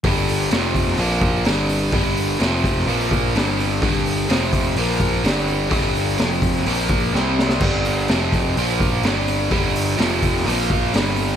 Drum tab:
CC |----------------|----------------|----------------|----------------|
HH |o-o-o-o-o-o-o-o-|o-o-o-o-o-o-o-o-|o-o-o-o-o-o-o-o-|o-o-o-o-o-o-----|
SD |----o--o----o---|----o--o----o---|----o-------o---|----o--o----o-oo|
BD |o-----o---o-----|o-----o---o-----|o-----o---o-----|o-----o---o-----|

CC |x---------------|----------------|
HH |--o-o-o-o-o-o-o-|o-o-o-o-o-o-o-o-|
SD |----o-------o---|----o--o----o---|
BD |o-----o---o-----|o-----o---o-----|